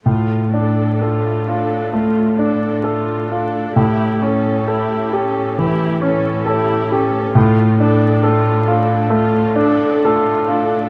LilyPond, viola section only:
\new Staff \with { instrumentName = "Viola section" } { \time 4/4 \key d \minor \tempo 4 = 66 <a f'>8 <d' a'>8 <a f'>8 <d' a'>8 <a f'>8 <d' a'>8 <a f'>8 <d' a'>8 | <e' g'>8 <cis' a'>8 <e' g'>8 <cis' a'>8 <e' g'>8 <cis' a'>8 <e' g'>8 <cis' a'>8 | <a f'>8 <d' a'>8 <a f'>8 <d' a'>8 <a f'>8 <d' a'>8 <a f'>8 <d' a'>8 | }